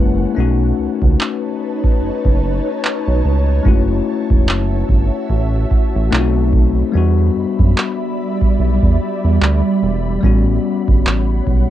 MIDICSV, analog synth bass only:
0, 0, Header, 1, 2, 480
1, 0, Start_track
1, 0, Tempo, 821918
1, 215, Time_signature, 4, 2, 24, 8
1, 6833, End_track
2, 0, Start_track
2, 0, Title_t, "Analog synth bass"
2, 0, Program_c, 0, 38
2, 0, Note_on_c, 0, 30, 107
2, 149, Note_off_c, 0, 30, 0
2, 218, Note_on_c, 0, 35, 105
2, 423, Note_off_c, 0, 35, 0
2, 458, Note_on_c, 0, 37, 46
2, 513, Note_off_c, 0, 37, 0
2, 595, Note_on_c, 0, 37, 96
2, 682, Note_off_c, 0, 37, 0
2, 1177, Note_on_c, 0, 30, 48
2, 1233, Note_off_c, 0, 30, 0
2, 1315, Note_on_c, 0, 30, 85
2, 1521, Note_off_c, 0, 30, 0
2, 1797, Note_on_c, 0, 35, 88
2, 1883, Note_off_c, 0, 35, 0
2, 1898, Note_on_c, 0, 37, 87
2, 2103, Note_off_c, 0, 37, 0
2, 2135, Note_on_c, 0, 30, 99
2, 2341, Note_off_c, 0, 30, 0
2, 2514, Note_on_c, 0, 28, 97
2, 2617, Note_on_c, 0, 30, 97
2, 2626, Note_off_c, 0, 28, 0
2, 2823, Note_off_c, 0, 30, 0
2, 2856, Note_on_c, 0, 31, 89
2, 2975, Note_off_c, 0, 31, 0
2, 3094, Note_on_c, 0, 33, 91
2, 3301, Note_off_c, 0, 33, 0
2, 3478, Note_on_c, 0, 33, 82
2, 3563, Note_off_c, 0, 33, 0
2, 3578, Note_on_c, 0, 35, 103
2, 3989, Note_off_c, 0, 35, 0
2, 4058, Note_on_c, 0, 40, 106
2, 4263, Note_off_c, 0, 40, 0
2, 4299, Note_on_c, 0, 42, 45
2, 4353, Note_off_c, 0, 42, 0
2, 4435, Note_on_c, 0, 42, 99
2, 4521, Note_off_c, 0, 42, 0
2, 5018, Note_on_c, 0, 35, 96
2, 5136, Note_off_c, 0, 35, 0
2, 5155, Note_on_c, 0, 40, 87
2, 5241, Note_off_c, 0, 40, 0
2, 5398, Note_on_c, 0, 40, 84
2, 5483, Note_off_c, 0, 40, 0
2, 5498, Note_on_c, 0, 38, 93
2, 5617, Note_off_c, 0, 38, 0
2, 5738, Note_on_c, 0, 28, 87
2, 5943, Note_off_c, 0, 28, 0
2, 5976, Note_on_c, 0, 33, 107
2, 6182, Note_off_c, 0, 33, 0
2, 6356, Note_on_c, 0, 31, 88
2, 6442, Note_off_c, 0, 31, 0
2, 6459, Note_on_c, 0, 33, 96
2, 6664, Note_off_c, 0, 33, 0
2, 6699, Note_on_c, 0, 35, 84
2, 6817, Note_off_c, 0, 35, 0
2, 6833, End_track
0, 0, End_of_file